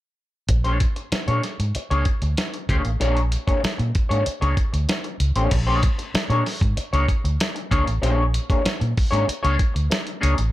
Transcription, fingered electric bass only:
0.49 0.83 A#1 medium
1.12 muted fingered electric bass stroke soft
1.28 1.39 A#2 medium
1.60 1.71 G#2 medium
1.75 muted fingered electric bass stroke soft
1.91 2.02 C#2 medium
2.22 2.33 D2 medium
2.69 2.80 C#2 medium
2.85 2.96 A1 medium
3.00 3.35 A#1 medium
3.64 muted fingered electric bass stroke soft
3.79 3.91 A#2 medium
4.10 4.22 G#2 medium
4.26 muted fingered electric bass stroke soft
4.42 4.53 C#2 medium
4.73 4.85 D2 medium
5.20 5.32 C#2 medium
5.36 5.47 A1 medium
5.51 5.86 A#1 loud
6.14 muted fingered electric bass stroke soft
6.30 6.41 A#2 medium
6.61 6.73 G#2 medium
6.77 muted fingered electric bass stroke soft
6.93 7.04 C#2 loud
7.24 7.36 D2 medium
7.72 7.83 C#2 medium
7.87 7.99 A1 medium
8.02 8.37 A#1 loud
8.66 muted fingered electric bass stroke soft
8.81 8.93 A#2 medium
9.12 9.24 G#2 medium
9.28 muted fingered electric bass stroke soft
9.44 9.56 C#2 loud
9.76 9.87 D2 medium
10.23 10.34 C#2 medium
10.39 10.50 A1 medium

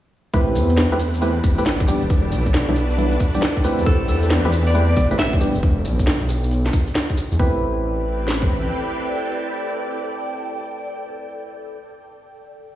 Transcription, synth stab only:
0.34 0.86 A3 loud
0.34 0.86 C4 loud
0.34 0.86 E4 medium
0.34 0.86 G4 medium
0.34 0.86 B4 loud
0.92 0.97 A3 medium
0.92 0.97 C4 medium
0.92 0.97 E4 medium
0.92 0.97 G4 medium
0.92 0.97 B4 medium
1.22 1.31 A3 medium
1.22 1.31 C4 medium
1.22 1.31 E4 medium
1.22 1.31 G4 medium
1.22 1.31 B4 loud
1.58 1.63 A3 loud
1.58 1.63 C4 medium
1.58 1.63 E4 medium
1.58 1.63 G4 medium
1.58 1.63 B4 loud
1.88 2.02 E3 medium
1.88 2.02 G3 medium
1.88 2.02 B3 medium
1.88 2.02 D4 medium
1.88 2.02 G4 medium
2.69 2.73 E3 medium
2.69 2.73 G3 medium
2.69 2.73 B3 medium
2.69 2.73 D4 medium
2.69 2.73 E4 medium
2.98 3.12 E3 medium
2.98 3.12 G3 medium
2.98 3.12 B3 medium
2.98 3.12 D4 medium
2.98 3.12 E4 medium
3.35 3.42 E3 medium
3.35 3.42 G3 medium
3.35 3.42 B3 medium
3.35 3.42 D4 medium
3.35 3.42 G4 medium
3.64 4.42 A3 loud
3.64 4.42 C4 medium
3.64 4.42 E4 medium
3.64 4.42 G4 medium
3.64 4.42 B4 loud
4.45 4.50 A3 medium
4.45 4.50 C4 medium
4.45 4.50 E4 medium
4.45 4.50 G4 medium
4.45 4.50 B4 medium
4.74 4.83 A3 medium
4.74 4.83 C4 medium
4.74 4.84 E4 medium
4.74 4.83 G4 medium
4.74 4.83 B4 loud
5.11 5.16 A3 loud
5.11 5.16 C4 medium
5.11 5.16 E4 medium
5.11 5.16 G4 medium
5.11 5.16 B4 loud
5.41 5.55 E3 medium
5.41 5.55 G3 medium
5.41 5.55 B3 medium
5.41 5.55 D4 medium
5.41 5.55 G4 medium
7.39 11.78 A3 medium
7.39 11.78 C4 medium
7.39 11.78 E4 medium
7.39 11.78 G4 medium
7.39 11.78 B4 medium

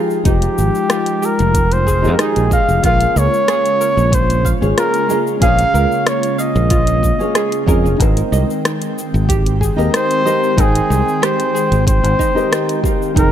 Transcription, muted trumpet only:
0.28 1.27 G4 loud
1.25 1.74 A#4 loud
1.73 2.15 C5 loud
2.14 2.22 A#4 medium
2.20 2.52 G#4 loud
2.53 2.82 F5 loud
2.85 3.20 F5 loud
3.18 4.16 C#5 loud
4.14 4.51 C5 loud
4.79 5.24 A#4 loud
5.43 6.09 F5 loud
6.08 6.39 C#5 loud
6.39 7.64 D#5 loud
9.96 10.61 C5 loud
10.60 11.26 G#4 loud
11.24 11.87 C5 loud
11.88 12.80 C5 loud
13.18 13.32 A#4 loud

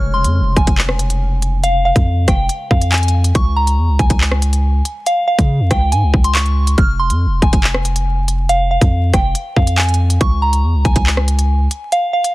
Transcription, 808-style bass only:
0.00 0.26 F1 loud
0.24 0.42 F2 loud
0.40 0.56 F1 loud
0.56 0.67 F1 loud
0.67 1.92 F1 loud
1.96 2.27 F2 loud
2.28 2.48 F1 loud
2.71 3.32 F2 loud
3.35 3.79 C#2 loud
3.78 3.90 E2 loud
3.89 3.99 C#2 loud
3.99 4.10 C#2 loud
4.10 4.82 C#2 loud
5.39 5.62 C#3 loud
5.60 5.70 F2 loud
5.71 5.94 C#2 loud
5.92 6.04 G#2 loud
6.03 6.13 C#2 loud
6.14 6.75 C#2 loud
6.78 7.11 F1 loud
7.10 7.28 F2 loud
7.26 7.41 F1 loud
7.42 7.52 F1 loud
7.53 8.77 F1 loud
8.81 9.12 F2 loud
9.14 9.34 F1 loud
9.56 10.18 F2 loud
10.21 10.65 C#2 loud
10.64 10.76 E2 loud
10.74 10.85 C#2 loud
10.85 10.95 C#2 loud
10.96 11.68 C#2 loud

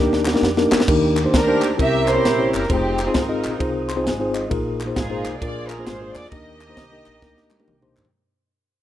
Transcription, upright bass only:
0.00 0.36 D#2 medium
0.42 0.67 F2 medium
0.72 0.86 E2 loud
0.88 1.27 D#2 loud
1.33 1.72 D2 medium
1.79 2.18 C2 loud
2.25 2.50 A#1 loud
2.54 2.68 F#1 medium
2.70 3.08 F1 loud
3.15 3.40 G#1 medium
3.45 3.58 A#1 medium
3.61 4.07 C2 medium
4.06 4.44 G#1 medium
4.51 4.89 A#1 loud
4.96 5.21 G#1 medium
5.25 5.39 C2 medium
5.42 5.80 A#1 medium
5.87 6.12 G#1 loud
6.15 6.30 E2 medium
6.32 6.71 D#2 loud
6.77 7.03 C2 medium
7.07 7.21 A#1 medium
7.23 7.61 D2 medium
7.69 7.93 C2 medium
7.98 8.11 E2 medium

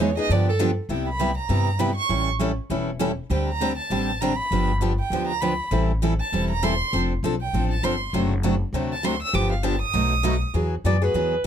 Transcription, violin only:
0.02 0.18 C#5 medium
0.18 0.33 D#5 loud
0.32 0.48 D5 loud
0.49 0.56 A4 loud
0.92 1.07 G5 medium
1.08 1.36 B5 loud
1.38 1.81 A#5 loud
1.80 1.95 B5 medium
1.95 2.24 C#6 loud
3.33 3.48 G5 medium
3.48 3.76 A#5 loud
3.78 4.22 A5 loud
4.21 4.38 A#5 loud
4.36 4.67 B5 loud
5.00 5.26 G5 loud
5.27 5.42 A#5 loud
5.41 5.71 B5 loud
6.20 6.48 A5 loud
6.51 6.65 A#5 loud
6.63 6.93 C6 loud
7.41 7.69 G5 loud
7.71 7.85 A5 loud
7.83 8.13 C6 medium
8.93 9.06 A5 loud
9.05 9.22 C6 medium
9.22 9.36 E6 loud
9.35 9.51 D6 loud
9.52 9.65 F5 medium
9.63 9.81 A5 loud
9.82 10.45 D#6 loud

